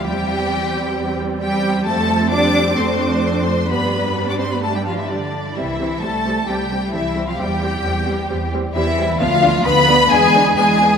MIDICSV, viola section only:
0, 0, Header, 1, 2, 480
1, 0, Start_track
1, 0, Key_signature, 0, "major"
1, 0, Tempo, 453172
1, 61, Time_signature, 4, 2, 24, 8
1, 2941, Tempo, 464756
1, 5821, Tempo, 455581
1, 11523, End_track
2, 0, Start_track
2, 0, Title_t, "Viola section"
2, 0, Program_c, 0, 48
2, 56, Note_on_c, 0, 60, 50
2, 61, Note_on_c, 0, 55, 48
2, 1473, Note_off_c, 0, 60, 0
2, 1475, Note_off_c, 0, 55, 0
2, 1503, Note_on_c, 0, 60, 54
2, 1508, Note_on_c, 0, 55, 58
2, 1972, Note_off_c, 0, 60, 0
2, 1974, Note_off_c, 0, 55, 0
2, 1985, Note_on_c, 0, 60, 61
2, 1986, Note_on_c, 0, 53, 54
2, 2452, Note_off_c, 0, 53, 0
2, 2459, Note_on_c, 0, 55, 58
2, 2923, Note_off_c, 0, 60, 0
2, 2940, Note_off_c, 0, 55, 0
2, 2943, Note_on_c, 0, 62, 56
2, 2944, Note_on_c, 0, 57, 57
2, 3875, Note_off_c, 0, 57, 0
2, 3885, Note_off_c, 0, 62, 0
2, 3896, Note_on_c, 0, 55, 47
2, 3897, Note_on_c, 0, 62, 47
2, 5314, Note_off_c, 0, 55, 0
2, 5315, Note_off_c, 0, 62, 0
2, 5343, Note_on_c, 0, 55, 40
2, 5345, Note_on_c, 0, 62, 40
2, 5426, Note_off_c, 0, 55, 0
2, 5428, Note_off_c, 0, 62, 0
2, 5828, Note_on_c, 0, 55, 42
2, 5828, Note_on_c, 0, 60, 44
2, 5912, Note_off_c, 0, 55, 0
2, 5912, Note_off_c, 0, 60, 0
2, 6064, Note_on_c, 0, 55, 41
2, 6065, Note_on_c, 0, 60, 40
2, 6148, Note_off_c, 0, 55, 0
2, 6149, Note_off_c, 0, 60, 0
2, 6305, Note_on_c, 0, 55, 43
2, 6306, Note_on_c, 0, 60, 44
2, 6389, Note_off_c, 0, 55, 0
2, 6391, Note_off_c, 0, 60, 0
2, 6549, Note_on_c, 0, 55, 41
2, 6551, Note_on_c, 0, 60, 39
2, 6633, Note_off_c, 0, 55, 0
2, 6635, Note_off_c, 0, 60, 0
2, 6787, Note_on_c, 0, 55, 44
2, 6790, Note_on_c, 0, 60, 44
2, 6871, Note_off_c, 0, 55, 0
2, 6874, Note_off_c, 0, 60, 0
2, 7029, Note_on_c, 0, 55, 40
2, 7031, Note_on_c, 0, 60, 42
2, 7114, Note_off_c, 0, 55, 0
2, 7115, Note_off_c, 0, 60, 0
2, 7257, Note_on_c, 0, 60, 44
2, 7260, Note_on_c, 0, 55, 45
2, 7341, Note_off_c, 0, 60, 0
2, 7344, Note_off_c, 0, 55, 0
2, 7504, Note_on_c, 0, 60, 44
2, 7505, Note_on_c, 0, 55, 44
2, 7588, Note_off_c, 0, 60, 0
2, 7589, Note_off_c, 0, 55, 0
2, 7751, Note_on_c, 0, 60, 48
2, 7752, Note_on_c, 0, 55, 49
2, 7835, Note_off_c, 0, 60, 0
2, 7836, Note_off_c, 0, 55, 0
2, 7993, Note_on_c, 0, 55, 47
2, 7995, Note_on_c, 0, 60, 47
2, 8078, Note_off_c, 0, 55, 0
2, 8079, Note_off_c, 0, 60, 0
2, 8234, Note_on_c, 0, 55, 51
2, 8236, Note_on_c, 0, 60, 47
2, 8318, Note_off_c, 0, 55, 0
2, 8320, Note_off_c, 0, 60, 0
2, 8462, Note_on_c, 0, 60, 50
2, 8467, Note_on_c, 0, 55, 49
2, 8547, Note_off_c, 0, 60, 0
2, 8551, Note_off_c, 0, 55, 0
2, 8704, Note_on_c, 0, 55, 58
2, 8705, Note_on_c, 0, 60, 51
2, 8788, Note_off_c, 0, 55, 0
2, 8789, Note_off_c, 0, 60, 0
2, 8942, Note_on_c, 0, 55, 52
2, 8945, Note_on_c, 0, 60, 54
2, 9027, Note_off_c, 0, 55, 0
2, 9029, Note_off_c, 0, 60, 0
2, 9181, Note_on_c, 0, 60, 60
2, 9183, Note_on_c, 0, 55, 60
2, 9265, Note_off_c, 0, 60, 0
2, 9267, Note_off_c, 0, 55, 0
2, 9417, Note_on_c, 0, 55, 59
2, 9418, Note_on_c, 0, 60, 59
2, 9501, Note_off_c, 0, 55, 0
2, 9502, Note_off_c, 0, 60, 0
2, 9649, Note_on_c, 0, 59, 65
2, 9652, Note_on_c, 0, 62, 67
2, 9733, Note_off_c, 0, 59, 0
2, 9736, Note_off_c, 0, 62, 0
2, 9885, Note_on_c, 0, 59, 63
2, 9885, Note_on_c, 0, 62, 62
2, 9969, Note_off_c, 0, 59, 0
2, 9970, Note_off_c, 0, 62, 0
2, 10130, Note_on_c, 0, 59, 64
2, 10131, Note_on_c, 0, 62, 66
2, 10215, Note_off_c, 0, 59, 0
2, 10215, Note_off_c, 0, 62, 0
2, 10375, Note_on_c, 0, 62, 65
2, 10376, Note_on_c, 0, 59, 64
2, 10459, Note_off_c, 0, 62, 0
2, 10460, Note_off_c, 0, 59, 0
2, 10614, Note_on_c, 0, 62, 70
2, 10615, Note_on_c, 0, 59, 67
2, 10699, Note_off_c, 0, 59, 0
2, 10699, Note_off_c, 0, 62, 0
2, 10855, Note_on_c, 0, 59, 63
2, 10855, Note_on_c, 0, 62, 62
2, 10939, Note_off_c, 0, 62, 0
2, 10940, Note_off_c, 0, 59, 0
2, 11091, Note_on_c, 0, 59, 59
2, 11091, Note_on_c, 0, 62, 62
2, 11175, Note_off_c, 0, 59, 0
2, 11175, Note_off_c, 0, 62, 0
2, 11346, Note_on_c, 0, 62, 58
2, 11347, Note_on_c, 0, 59, 54
2, 11430, Note_off_c, 0, 62, 0
2, 11432, Note_off_c, 0, 59, 0
2, 11523, End_track
0, 0, End_of_file